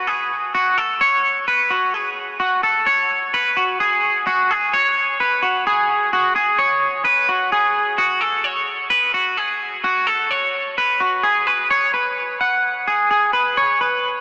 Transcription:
0.07 G#4
0.55 F#4
0.78 A4
1.01 C#5
1.48 B4
1.70 F#4
1.94 G#4
2.40 F#4
2.63 A4
2.86 C#5
3.34 B4
3.57 F#4
3.80 G#4
4.27 F#4
4.51 G#4
4.74 C#5
5.20 B4
5.42 F#4
5.67 G#4
6.13 F#4
6.36 G#4
6.59 C#5
7.05 B4
7.29 F#4
7.52 G#4
7.98 F#4
8.21 A4
8.44 C#5
8.90 B4
9.14 F#4
9.37 G#4
9.84 F#4
10.07 A4
10.31 C#5
10.78 B4
11.00 F#4
11.23 G#4
11.47 B4
11.71 C#5
11.94 B4
12.41 F#5
12.88 G#4
13.11 G#4
13.33 B4
13.57 C#5
13.81 B4

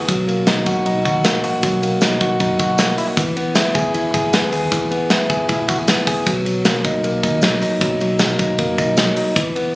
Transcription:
Already playing: B3 E4
0.00 G#4
0.08 B1 F#3, kick, hi-hat pedal, ride, tambourine
0.28 A#3, ride, tambourine
0.47 B2 D#4, snare, ride, tambourine
0.66 B1 F#4, kick, ride, tambourine
0.86 B1 D#4, ride
1.05 D#2 F#4, kick, ride, tambourine
1.24 A#3, snare, ride, tambourine
1.44 A#1 F#4, open hi-hat, ride, tambourine
1.63 B1 F#3, kick, hi-hat pedal, ride, tambourine
1.82 A#3, ride, tambourine
2.01 B2 D#4, snare, ride, tambourine
2.21 B1 F#4, kick, ride, tambourine
2.40 F#2 D#4, kick, ride, tambourine
2.59 B1 F#4, kick, ride, tambourine
2.78 A#3, snare, ride, tambourine
2.98 E4, open hi-hat, ride, tambourine
3.08 F#4
3.17 E2 E3, kick, hi-hat pedal, ride, tambourine
3.37 B3, ride
3.55 E3 E4, snare, ride, tambourine
3.75 E2 G#4, kick, ride, tambourine
3.94 E2 E4, ride
4.14 G#2 G#4, kick, ride, tambourine
4.33 E2 B3, snare, ride, tambourine
4.52 D#2 G#4, open hi-hat, ride, tambourine
4.72 E2 E3, kick, hi-hat pedal, ride, tambourine
4.91 B3, ride
5.10 E3 E4, snare, ride, tambourine
5.30 E2 G#4, kick, ride, tambourine
5.49 B2 E4, kick, ride, tambourine
5.68 E2 F#4, kick, ride, tambourine
5.78 G#4
5.88 B3, snare, ride, tambourine
6.07 G#4, kick, open hi-hat, ride, tambourine
6.26 B1 F#3, kick, hi-hat pedal, ride, tambourine
6.46 F#3, ride, tambourine
6.65 B2 A#3, snare, ride, tambourine
6.84 B1 D#4, kick, ride, tambourine
7.03 B1 A#3, ride, tambourine
7.23 D#2 D#4, kick, ride, tambourine
7.41 B1 F#3, snare, ride, tambourine
7.61 A#1 D#4, open hi-hat, ride, tambourine
7.81 B1 F#3, kick, hi-hat pedal, ride, tambourine
8.00 F#3, ride, tambourine
8.19 B2 G#3, snare, ride, tambourine
8.30 A#3
8.39 B1 D#4, kick, ride, tambourine
8.58 F#2 A#3, kick, ride, tambourine
8.78 B1 D#4, kick, ride, tambourine
8.97 F#3, snare, ride, tambourine
9.16 D#4, open hi-hat, ride, tambourine
9.36 E2 E3, kick, hi-hat pedal, ride, tambourine
9.56 B3, ride

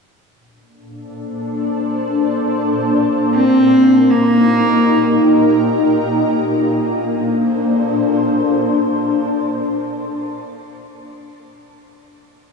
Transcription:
0.26 A#2
0.46 D4
0.52 A#3
0.62 A4
0.74 C5
3.34 C4
3.81 D#4
3.98 A#4
4.02 G4
4.10 A#3
6.44 A#2
6.56 A#3
6.66 D4
6.77 A4
6.91 C5

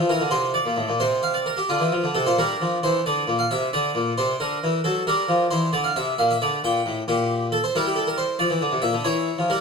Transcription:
Already playing: F4
0.09 E3 A#4
0.20 D3
0.31 C3 C5
0.54 D5
0.65 A#2
0.77 A2
0.89 A#2
1.00 C3 C5
1.23 F5
1.34 D5
1.46 A#4
1.57 G4
1.69 D3 F4
1.80 E3
1.92 F3
2.04 D3
2.15 C3 A4
2.26 A#2 C5
2.39 G3 D4 A#4
2.62 F3
2.83 E3 C5
3.06 D3 D5
3.27 A#2
3.39 F5
3.51 C3 E5
3.73 D3 D4 D5
3.95 A#2
4.18 C3 C5
4.40 D3 A#4
4.63 E3
4.84 F#3 A4
5.07 G3 D4 A#4
5.28 F3
5.51 E3 C5
5.73 D3 D5
5.84 F5
5.96 C3 E5
6.18 A#2 F5
6.31 E5
6.42 D3 D5
6.64 A#2 G5
6.86 A2
7.08 A#2 G4
7.52 A4
7.64 C5
7.75 G3 E4 A#4
7.86 G4
7.96 A4
8.07 A#4
8.18 C5
8.39 F3 D5
8.50 E3
8.61 D3
8.72 C3
8.82 A#2 E5
8.93 D3
9.04 E3 E4 C#5
9.38 F3
9.50 G3 A#4

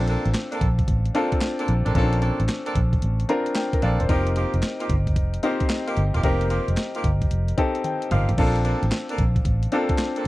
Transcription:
Already playing: A#1 C4 D4 F4 A4
0.07 A#3 C4 D4 A4, closed hi-hat
0.26 A1, closed hi-hat
0.34 snare, clap, closed hi-hat
0.52 A#3 C4 D4 A4, closed hi-hat
0.61 A#1, kick, closed hi-hat
0.79 kick, closed hi-hat
0.88 A1, kick, closed hi-hat
1.05 closed hi-hat
1.14 A#3 C4 D4 F4 A4, closed hi-hat
1.32 kick, closed hi-hat
1.41 snare, clap, closed hi-hat
1.59 A#3 C4 D4 A4, closed hi-hat
1.68 A#1, closed hi-hat
1.85 A1 A#3 C4 D4 A4, closed hi-hat
1.95 A#1 A#3 C4 C#4 D4 F4 A4, kick, closed hi-hat
2.02 D4
2.13 closed hi-hat
2.21 A#3 C4 D4 A4, closed hi-hat
2.40 A1, closed hi-hat
2.49 snare, clap, closed hi-hat
2.66 A#3 C4 D4 A4, closed hi-hat
2.75 A#1, kick, closed hi-hat
2.93 kick, closed hi-hat
3.02 A1, closed hi-hat
3.20 closed hi-hat
3.29 C4 D4 F4 A#4 A#5, closed hi-hat
3.46 closed hi-hat
3.55 G5, snare, clap, closed hi-hat
3.73 A#4, kick, closed hi-hat
3.82 A#1 A#3 C4 D4 A4 D5 F5, closed hi-hat
4.00 E1 C5, closed hi-hat
4.09 F1 A#3 C4 D#4 F4 G4 A#4, kick, closed hi-hat
4.27 closed hi-hat
4.36 A#3 D#4 F4 G4, closed hi-hat
4.54 F1, closed hi-hat
4.63 snare, clap, closed hi-hat
4.80 A#3 D#4 F4 G4, closed hi-hat
4.90 G1, kick, closed hi-hat
5.07 kick, closed hi-hat
5.16 F1, kick, closed hi-hat
5.34 closed hi-hat
5.43 A#3 C4 D#4 F4 G4 C5, closed hi-hat
5.60 kick, closed hi-hat
5.70 snare, clap, closed hi-hat
5.87 A#3 D#4 F4 G4, closed hi-hat
5.97 G1, closed hi-hat
6.14 E1 A#3 D#4 F4 G4, closed hi-hat
6.23 F1 A#3 C4 D#4 F4 G4 A#4, kick, closed hi-hat
6.41 closed hi-hat
6.50 A#3 D#4 F4 G4, closed hi-hat
6.68 F1, closed hi-hat
6.77 snare, clap, closed hi-hat
6.94 A#3 D#4 F4 G4, closed hi-hat
7.04 G1, kick, closed hi-hat
7.22 kick, closed hi-hat
7.31 F1, closed hi-hat
7.48 closed hi-hat
7.57 C4 D#4 G4 A4, kick, closed hi-hat
7.75 closed hi-hat
7.84 G5, closed hi-hat, high tom
8.02 closed hi-hat
8.11 G1 A#3 D#4 F4 G4 F5, closed hi-hat, mid tom
8.29 A1, closed hi-hat, floor tom
8.38 A#1 A#3 C4 D4 F4 A4, kick, crash
8.56 closed hi-hat
8.64 A#3 C4 D4 A4, closed hi-hat
8.83 A1, closed hi-hat
8.92 snare, clap, closed hi-hat
9.09 A#3 C4 D4 A4, closed hi-hat
9.18 A#1, kick, closed hi-hat
9.36 kick, closed hi-hat
9.45 A1, kick, closed hi-hat
9.63 closed hi-hat
9.71 A#3 C4 D4 F4 A4, closed hi-hat
9.89 kick, closed hi-hat
9.98 snare, clap, closed hi-hat
10.16 A#3 C4 D4 A4, closed hi-hat

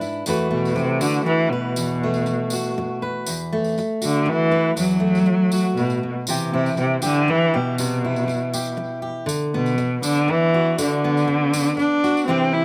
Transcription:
Already playing: G#2 D4 B4
0.01 E4, tambourine
0.26 E2 E3 A3 F#4 B4, tambourine
0.51 B2 A3
0.65 tambourine
0.75 C3, muted steel-string acoustic guitar stroke, tambourine
1.01 D3 F#4, tambourine
1.14 tambourine
1.25 E3, muted steel-string acoustic guitar stroke
1.51 B2 B4
1.76 E2, tambourine
2.03 A3
2.14 tambourine
2.26 muted steel-string acoustic guitar stroke, tambourine
2.50 F#4, tambourine
2.64 tambourine
2.78 muted steel-string acoustic guitar stroke
3.02 B4
3.26 E2, tambourine
3.53 A3
3.64 tambourine
3.78 muted steel-string acoustic guitar stroke, tambourine
4.01 D3 F#4, tambourine
4.14 tambourine
4.26 E3, muted steel-string acoustic guitar stroke
4.51 B4
4.76 E2 F#3, tambourine
5.00 A3
5.15 tambourine
5.26 muted steel-string acoustic guitar stroke
5.52 F#4, tambourine
5.77 A2 B2, tambourine
5.90 tambourine
6.03 B2
6.27 C3 E3 E4 G4, tambourine
6.53 C3 E4
6.66 tambourine
6.77 C3, muted steel-string acoustic guitar stroke, tambourine
7.02 D3 G4, tambourine
7.14 tambourine
7.28 E3, muted steel-string acoustic guitar stroke
7.54 B2 G4
7.78 C3, tambourine
8.04 E4
8.16 tambourine
8.28 muted steel-string acoustic guitar stroke, tambourine
8.53 G4, tambourine
8.66 tambourine
8.77 muted steel-string acoustic guitar stroke
9.02 G4
9.26 D3, tambourine
9.54 B2 B3
9.66 tambourine
9.78 muted steel-string acoustic guitar stroke, tambourine
10.02 D3 D4, tambourine
10.16 tambourine
10.28 E3, muted steel-string acoustic guitar stroke
10.54 F#4
10.78 D3, tambourine
11.04 B3
11.17 tambourine
11.28 muted steel-string acoustic guitar stroke
11.53 D4, tambourine
11.68 tambourine
11.77 D4, muted steel-string acoustic guitar stroke, tambourine
12.04 F#4, tambourine
12.17 tambourine
12.27 C3 E3 C4 E4 G4
12.53 E4

